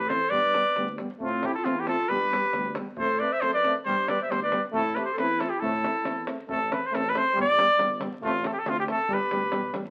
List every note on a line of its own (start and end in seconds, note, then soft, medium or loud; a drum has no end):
0.00 0.13 A2 medium
0.00 0.10 B4 medium
0.07 0.19 C4 medium
0.07 0.31 A4 medium
0.07 0.31 C5 loud
0.07 davul high medium
0.11 0.20 E3 medium
0.23 davul high soft
0.30 0.57 G2 loud
0.30 0.40 G3 medium
0.30 0.42 B3 medium
0.30 0.97 B4 loud
0.30 0.97 D5 loud
0.30 davul low loud
0.54 0.63 G3 medium
0.54 0.64 B3 medium
0.54 davul high medium
0.76 1.01 D2 loud
0.76 0.85 G3 medium
0.76 0.87 B3 medium
0.76 davul high medium
0.98 1.08 G3 medium
0.98 1.10 B3 medium
0.98 davul high medium
1.11 davul high soft
1.19 1.46 A2 loud
1.19 1.28 A3 medium
1.19 1.30 C4 medium
1.19 1.47 F4 medium
1.19 davul low medium
1.24 1.48 C4 medium
1.41 1.51 A3 medium
1.41 1.52 C4 medium
1.41 davul high medium
1.46 1.57 E4 medium
1.46 1.54 G4 medium
1.54 1.68 F4 medium
1.54 1.66 A4 medium
1.63 1.89 E2 loud
1.63 1.75 A3 medium
1.63 1.72 C4 medium
1.63 1.78 C4 medium
1.63 1.82 F4 medium
1.63 davul high medium
1.76 1.87 E4 medium
1.76 1.88 G4 medium
1.87 1.96 A3 medium
1.87 1.96 C4 medium
1.87 2.11 F4 medium
1.87 2.10 A4 loud
1.87 davul high medium
2.00 davul high soft
2.09 2.34 G2 loud
2.09 2.18 G3 medium
2.09 2.18 B3 medium
2.09 2.75 G4 medium
2.09 2.75 B4 loud
2.09 davul low medium
2.31 2.41 G3 medium
2.31 2.40 B3 medium
2.31 davul high medium
2.45 davul high soft
2.53 2.78 D2 loud
2.53 2.64 G3 medium
2.53 2.64 B3 medium
2.53 davul high medium
2.65 davul high soft
2.75 2.85 G3 medium
2.75 2.86 B3 medium
2.75 davul high medium
2.97 3.22 A2 medium
2.97 3.07 A3 medium
2.97 3.07 C4 medium
2.97 3.23 A4 medium
2.97 3.21 C5 medium
2.97 davul low loud
3.19 3.29 A3 medium
3.19 3.30 C4 medium
3.19 3.33 B4 medium
3.19 3.34 D5 medium
3.32 3.45 C5 medium
3.32 3.43 E5 medium
3.41 3.66 F#2 medium
3.41 3.51 A3 medium
3.41 3.51 C4 medium
3.41 3.54 A4 medium
3.41 3.53 C5 loud
3.41 davul high medium
3.54 3.74 B4 medium
3.54 3.74 D5 loud
3.64 3.74 A3 medium
3.64 3.73 C4 medium
3.64 davul high medium
3.78 davul high soft
3.85 4.09 G2 medium
3.85 3.95 G3 medium
3.85 3.95 B3 medium
3.85 4.11 G4 medium
3.85 4.11 C5 loud
3.85 davul low loud
4.08 4.17 G3 medium
4.08 4.17 B3 medium
4.08 4.20 B4 medium
4.08 4.20 D5 medium
4.08 davul high medium
4.22 4.33 C5 medium
4.22 4.33 E5 medium
4.29 4.54 D2 medium
4.29 4.38 G3 medium
4.29 4.39 B3 medium
4.29 4.42 G4 medium
4.29 4.42 C5 medium
4.29 davul high medium
4.43 4.63 B4 medium
4.43 4.63 D5 medium
4.51 4.60 G3 medium
4.51 4.61 B3 medium
4.51 davul high medium
4.65 davul high soft
4.72 4.98 A2 medium
4.72 4.81 A3 medium
4.72 4.83 C4 medium
4.72 4.96 A4 loud
4.72 davul low loud
4.77 5.00 E4 medium
4.95 5.05 A3 medium
4.95 5.03 C4 medium
4.95 5.04 B4 medium
4.95 davul high medium
4.99 5.09 G4 medium
5.05 5.15 C5 medium
5.13 5.19 A4 medium
5.18 5.42 E2 medium
5.18 5.26 A3 medium
5.18 5.26 C4 medium
5.18 5.41 B4 medium
5.18 davul high medium
5.22 5.46 E4 medium
5.38 5.48 A3 medium
5.38 5.47 C4 medium
5.38 5.51 A4 medium
5.38 davul high medium
5.45 5.59 F4 medium
5.50 5.61 G4 medium
5.50 davul high soft
5.57 5.67 E4 medium
5.57 6.26 A4 medium
5.62 5.86 A2 loud
5.62 5.71 A3 medium
5.62 5.70 C4 medium
5.62 davul low loud
5.67 6.30 E4 medium
5.75 davul high soft
5.83 5.92 A3 medium
5.83 5.94 C4 medium
5.83 davul high medium
6.04 6.30 E2 medium
6.04 6.13 A3 medium
6.04 6.14 C4 medium
6.04 davul high medium
6.27 6.36 A3 soft
6.27 6.36 C4 medium
6.27 davul high medium
6.40 davul high soft
6.49 6.73 A1 medium
6.49 6.57 A3 medium
6.49 6.58 C4 medium
6.49 6.75 A4 loud
6.49 davul low loud
6.69 6.78 A3 medium
6.69 6.80 C4 medium
6.69 6.88 B4 medium
6.69 davul high medium
6.86 6.96 C5 medium
6.92 7.16 A1 loud
6.92 7.00 A3 medium
6.92 7.03 C4 medium
6.92 7.11 A4 loud
6.92 davul high medium
7.09 7.20 B4 medium
7.14 7.22 A3 medium
7.14 7.25 C4 medium
7.14 davul high medium
7.18 7.38 C5 loud
7.28 davul high soft
7.34 7.60 G1 medium
7.34 7.43 G3 medium
7.34 davul low loud
7.39 7.47 B3 medium
7.39 8.00 D5 loud
7.57 7.66 G3 medium
7.57 7.69 B3 medium
7.57 davul high medium
7.77 8.04 G1 loud
7.77 7.86 G3 medium
7.77 davul high medium
7.83 7.91 B3 medium
7.99 8.08 G3 medium
7.99 davul high medium
8.05 8.13 B3 medium
8.14 davul high soft
8.22 8.46 A1 loud
8.22 8.31 A3 medium
8.22 8.48 F4 medium
8.22 davul low medium
8.26 8.34 C4 medium
8.44 8.53 A3 medium
8.44 8.49 A4 medium
8.44 davul high medium
8.49 8.57 C4 medium
8.49 8.61 G4 medium
8.59 8.70 A4 medium
8.65 8.89 D2 loud
8.65 8.74 A3 medium
8.65 8.76 C4 medium
8.65 8.79 F4 medium
8.65 davul high medium
8.80 8.84 G4 medium
8.88 8.97 A3 medium
8.88 8.98 C4 medium
8.88 9.15 A4 loud
8.88 davul high medium
8.99 davul high soft
9.08 9.20 G1 loud
9.08 9.18 G3 medium
9.08 davul low medium
9.12 9.20 B3 medium
9.12 9.76 G4 medium
9.12 9.76 B4 loud
9.30 9.50 D2 medium
9.30 9.40 G3 medium
9.30 9.42 B3 medium
9.30 davul high medium
9.51 9.71 B1 medium
9.51 9.60 G3 medium
9.51 9.63 B3 medium
9.51 davul high medium
9.73 9.90 A1 medium
9.73 9.82 G3 medium
9.73 davul high medium
9.79 9.87 B3 medium
9.86 davul high soft